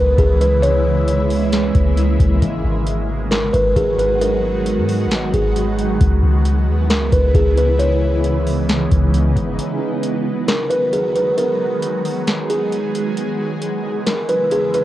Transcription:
Already playing: C#2 C#3 E3 G#3 B3 E4 B4
0.18 C#2 G#4, kick, closed hi-hat
0.41 B4, closed hi-hat
0.62 A#3 C#5, closed hi-hat
1.08 closed hi-hat
1.30 open hi-hat
1.53 snare, closed hi-hat
1.75 C#2, kick, closed hi-hat
1.97 closed hi-hat
2.20 C#2, kick, closed hi-hat
2.42 G#1 D#3 F#3 B3 F#4, kick, closed hi-hat
2.65 G#1
2.87 closed hi-hat
3.31 A#4, snare, closed hi-hat
3.53 G#1 B4, kick, closed hi-hat
3.76 G#1 G#4, kick, closed hi-hat
3.99 B4, closed hi-hat
4.21 A#4, closed hi-hat
4.66 closed hi-hat
4.77 G#2
4.89 open hi-hat
5.06 G#1
5.11 snare, closed hi-hat
5.33 G#1 G#4, kick, closed hi-hat
5.56 closed hi-hat
5.78 closed hi-hat
6.01 C#2 C#3 E3 E4, kick, closed hi-hat
6.23 C#2
6.45 closed hi-hat
6.67 D#2
6.90 C#2 A#4, snare, closed hi-hat
7.12 C#2 B4, kick, closed hi-hat
7.35 C#2 G#4, kick, closed hi-hat
7.57 B4, closed hi-hat
7.79 D#4 C#5, closed hi-hat
8.24 closed hi-hat
8.47 open hi-hat
8.69 snare, closed hi-hat
8.91 C#2, kick, closed hi-hat
9.14 closed hi-hat
9.36 G#1, kick, closed hi-hat
9.59 D#3 F#3 G#3 F#4, closed hi-hat
10.03 closed hi-hat
10.48 A#4, snare, closed hi-hat
10.70 B4, closed hi-hat
10.93 G#4, closed hi-hat
11.15 B4, closed hi-hat
11.38 G#4 A#4, closed hi-hat
11.82 closed hi-hat
12.05 open hi-hat
12.27 snare, closed hi-hat
12.50 G#4, closed hi-hat
12.72 closed hi-hat
12.95 closed hi-hat
13.17 C#3 E3 B3 E4, closed hi-hat
13.62 closed hi-hat
14.06 A#4, snare, closed hi-hat
14.29 B4, closed hi-hat
14.51 G#4, closed hi-hat
14.74 B4, closed hi-hat

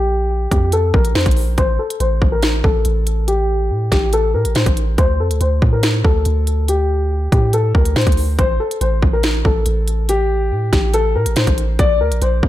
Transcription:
Already playing: A#1 G4
0.51 F2 G4, kick, closed hi-hat
0.72 A4, closed hi-hat
0.94 A#1 A#4, kick
1.05 closed hi-hat
1.15 F2 C5, snare, closed hi-hat
1.21 closed hi-hat
1.26 A#1, kick, closed hi-hat
1.31 closed hi-hat
1.37 open hi-hat
1.58 A1 C5, kick, closed hi-hat
1.79 A4
1.90 closed hi-hat
2.00 A1 C5, closed hi-hat
2.22 A1, kick
2.32 A#4
2.43 snare, closed hi-hat
2.64 A1 A4, kick
2.85 A1, closed hi-hat
3.07 closed hi-hat
3.28 G4, closed hi-hat
3.70 A2
3.92 A1 G4, kick, snare, closed hi-hat
4.13 A4, closed hi-hat
4.34 A2 A#4
4.45 A1, closed hi-hat
4.55 A2 C5, snare, closed hi-hat
4.66 A1, kick, closed hi-hat
4.77 closed hi-hat
4.98 D2 C5, kick, closed hi-hat
5.20 F2 A4
5.30 D2, closed hi-hat
5.41 D2 C5, closed hi-hat
5.62 A2, kick
5.73 A#4
5.83 snare, closed hi-hat
6.05 D2 A4, kick
6.25 D2, closed hi-hat
6.47 closed hi-hat
6.68 G4, closed hi-hat
7.32 A2 G4, kick, closed hi-hat
7.53 A4, closed hi-hat
7.75 D2 A#4, kick
7.85 closed hi-hat
7.96 A2 C5, snare, closed hi-hat
8.01 closed hi-hat
8.07 D2, kick, closed hi-hat
8.12 closed hi-hat
8.17 open hi-hat
8.39 A1 C5, kick, closed hi-hat
8.60 A4
8.71 closed hi-hat
8.81 A1 C5, closed hi-hat
9.03 A1, kick
9.13 A#4
9.23 snare, closed hi-hat
9.45 A1 A4, kick
9.66 A1, closed hi-hat
9.88 closed hi-hat
10.09 G4, closed hi-hat
10.51 A2
10.72 A1 G4, kick, snare, closed hi-hat
10.94 A4, closed hi-hat
11.15 A2 A#4
11.26 A1, closed hi-hat
11.36 A2 C5, snare, closed hi-hat
11.47 A1, kick, closed hi-hat
11.58 closed hi-hat
11.79 A#1 D5, kick, closed hi-hat
12.01 D2 A#4
12.11 A#1, closed hi-hat
12.22 A#1 C5, closed hi-hat
12.43 F2, kick

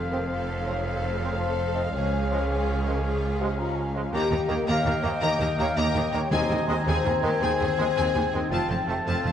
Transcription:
Already playing: F1 F2 F3 A3 C4 F4 A4 F5 C6
0.04 C5
0.11 F3 C4 G4 A4 A#4
0.22 F5
0.29 A4 C5 C6
0.40 A5
0.50 C6
0.66 F3 C4 F4 A#4 C#5
0.76 A3
0.85 F3 A4 C5
0.94 F4
1.04 A3
1.13 C5
1.20 A4 A#4 C#5
1.24 F3 C4
1.31 F5
1.39 A4 C5 A5 C6
1.50 A5
1.59 C6
1.68 A4
1.75 F3 C4 F4 C5 D#5
1.86 A3
1.93 C#2 C#3 C#4 G#4 C#5 G#5
2.04 C#4
2.13 G#3
2.22 F4
2.29 F3 G#3 A#4 C#5
2.41 G#4
2.46 F4 G#4 F5
2.59 C#6
2.69 F5
2.77 C#5
2.85 F3 G#3 G4 A#4
2.95 C#4
3.02 C#3 F4 G#4 F5
3.13 G#3
3.23 C#4
3.32 F4
3.40 F3 G#3 D#4 G4 C#5
3.50 G#4
3.57 C#4 F4 F5 A#5
3.68 C#6
3.75 F5 G#5
3.86 C#5
3.93 F3 G#3 F5
4.05 C#4
4.12 D#2 D#3 A#3 D#4 G4 D#5 G5 A#5
4.22 G3
4.30 D#2 A#3 D#4 G4 A#5
4.40 A#4
4.49 D#2 D#3 A#3 G4 A#4 A#5
4.59 D#5
4.67 D#2 A#3 G4 C#5 F5 A#5
4.78 G5
4.85 D#2 A#3 G4 A#5
4.95 G4
5.03 D#2 D#3 A#3 D#4 G4 C5 D#5 A#5
5.14 G3
5.21 D#2 D#3 A#3 G4 A#4 D#5 A#5
5.32 D#4
5.39 D#2 G3 A#3 G4 A#5
5.49 A#4
5.58 D#2 D#3 A#3 G4 C#5 F5 A#5
5.68 D#5
5.76 D#2 A#3 G4 A#4 D#5 G5 A#5
5.86 G5
5.94 D#2 A#3 G4 A#5
6.05 G4
6.13 D#2 D#3 A#3 D#4 G4 A#4 C#5 A#5
6.23 G3
6.31 D#2 D#3 C4 G#4 C5 D#5 G#5 A#5
6.41 G#3
6.50 D#2 C4 D#4 G#4 G#5
6.60 G#4
6.67 D#2 D#3 G#3 C4 D#4 G#4 C5 D#5 G#5
6.78 D#5
6.86 D#2 C4 G#4 C5 G#5
6.97 D#5
7.05 D#2 C4 G#4 G#5
7.15 G#4
7.22 D#2 D#3 G#3 C4 D#4 G4 G#4 A#4 G#5
7.33 G#3
7.41 D#2 D#3 C4 G#4 C5 G#5
7.50 D#4
7.59 D#2 G#3 C4 G#4 G#5
7.69 G#4
7.78 D#2 D#3 G#3 C4 D#4 G#4 G#5
7.87 D#5
7.96 D#2 C4 G#4 G5 G#5
8.05 D#5
8.14 D#2 C4 G#4 G#5
8.24 G#4
8.33 D#2 D#3 G#3 C4 D#4 G#4 G5 G#5
8.50 F1 F2 F3 C4 F4 A5
8.61 A3
8.68 F1 F2 C4 F4 A5
8.80 F4
8.87 F1 F2 C3 A3 C4 D#4 F4 G4 A4 A5
8.97 C5
9.05 F1 F2 C4 F4 A4 F5 A5
9.15 A5
9.25 F1 F2 C4 F4 A5

